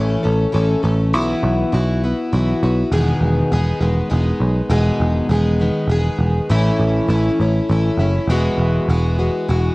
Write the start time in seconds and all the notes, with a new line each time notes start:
Already playing: A1 E3 A3 C#4 A4
0.23 A1 A3 C#4 A4
0.52 A1 E3 A3 C#4 A4
0.83 A1 A3 C#4 A4
1.13 B1 B2 E3 B3 E4 F#4
1.43 B1
1.72 B1 E3 B3 E4 F#4
2.03 B3 E4 F#4
2.33 B1 E3 B3 E4 F#4
2.63 B1 B3 E4 F#4
2.92 E1 E2 B2 D#3 G#3 B3 G#4
3.21 E1
3.52 E1 D#3 G#3 B3 G#4
3.81 E1 D#3 G#3 B3 G#4
4.10 E1 D#3 G#3 B3 G#4
4.40 B1
4.70 E1 E2 B2 D#3 G#3 B3 G#4
5.00 E1
5.29 E1 D#3 G#3 B3 G#4
5.59 D#3 G#3 B3 G#4
5.88 E1 D#3 G#3 B3 G#4
6.19 E1
6.50 A1 A2 E3 A3 C#4 E4
6.79 A1
7.08 A1 E3 A3 C#4 E4
7.40 A1 A3 C#4 E4
7.69 A1 E3 A3 C#4 E4
7.97 F#1 A3 C#4 E4
8.27 E1 E2 B2 E3 G#3 B3 F#4
8.58 E1
8.88 E1 E3 G#3 B3 F#4
9.19 E3 G#3 B3 F#4
9.48 E1 E3 G#3 B3 F#4